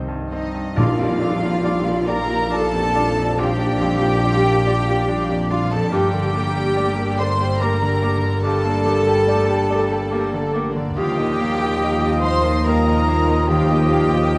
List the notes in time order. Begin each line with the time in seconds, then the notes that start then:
Already playing: C2 G2 C3 D#3 G3 C4 D#4 C5 D#5 D6
0.08 G2
0.16 D#4
0.32 C4 D#4 D#5
0.47 G3
0.55 G2
0.76 A#1 A#2 F3 G3 D4 F4 D5 F5, tam-tam
0.98 F2 A#3 G4 D5
1.07 F3
1.21 G3 D4 F4 D5 F5
1.36 D4
1.42 A#3 F4 G4 D5
1.64 G3 F4 D5 F5
1.85 A#3 F4 G4 D5
1.94 D5
2.06 G3 F4 A#4 D5 F5 A#5
2.23 F4
2.29 A#3 F4 G4 D5
2.50 G3 D4 F4 A4 D5 F5 A5
2.73 F2 A#3 G4 D5
2.81 F4
2.94 G3 D4 F4 D5 F5
3.09 F3
3.16 F2 A#3 G4 D5
3.36 A#1 A#2 G3 F4 G4 D5 F5 G5
3.59 A#3 D4 G4 D5
3.66 D4
3.80 F2 G3 F4 D5 F5
3.95 F3
4.02 A#3 F4 G4 D5
4.23 G3 F4 D5 F5
4.46 A#3 F4 G4 D5
4.52 D5
4.66 G3 F4 D5 F5
4.80 F4
4.88 A#3 F4 G4 D5
5.08 G3 D4 F4 D5 F5
5.29 F2 A#3 G4 D5
5.35 F4
5.50 G3 D4 F4 D5 F5
5.64 F3
5.71 F2 A#3 G4 A4 D5 A5
5.91 G1 G2 G3 A3 D4 G4 A#4 D5 G5
6.12 D3 A#3 A4 D5
6.20 D3
6.34 A3 A#3 G4 A#4 D5
6.48 A#3
6.55 A#3 G4 A4 D5
6.76 A3 G4 A#4 D5
6.98 A#3 G4 A4 D5
7.04 D5
7.17 A3 G4 A#4 C5 D5 C6
7.41 A#3 G4 A4 D5
7.60 A3 A#3 G4 A#4 D5 A#5
7.82 D3 A#3 A4 D5
7.88 G4
8.02 A3 A#3 G4 A#4 D5
8.16 D3
8.23 D3 A#3 A4 D5
8.43 G2 A3 G4 A4 A#4 D5 A5
8.65 A#3 A4 D5
8.73 A#3
8.85 D3 A3 G4 A#4 D5
9.00 D3
9.07 A#3 G4 A4 D5
9.28 A3 G4 A#4 D5
9.49 A#3 G4 A4 D5
9.57 D5
9.70 A3 G4 A#4 D5
9.91 A#3 G4 A4 D5
10.11 A3 A#3 G4 A#4 D5
10.34 D3 A#3 A4 D5
10.41 G4
10.54 A3 A#3 G4 A#4 D5
10.69 D3
10.75 D3 A#3 A4 D5
10.96 D#2 D#3 F3 G3 D#4 F4 G4 D#5 F5 G5
11.18 A#2 A#3 D#4 D#5
11.26 D#4
11.39 G3 A#3 F4 F5
11.54 A#3
11.60 A#3 D#4 F4 D#5
11.80 G3 F4 D#5 F5
12.01 A#3 D#4 F4 D#5
12.10 F5
12.22 G3 F4 C5 D#5 F5 C6
12.38 A#4
12.44 A#3 D#4 F4 D#5
12.64 G3 A#3 F4 A#4 F5 G5 A#5
12.85 A#2 A#3 D#4 D#5
12.93 F4
13.07 G3 A#3 F4 F5
13.21 D#4
13.28 A#2 A#3 D#4 D#5
13.49 D#2 D#3 G3 F4 G4 F5 G5
13.71 A#3 D#4 D#5
13.78 A#3
13.91 A#2 G3 F4 F5
14.07 D#4
14.12 A#3 D#4 F4 D#5
14.34 G3 F4 D#5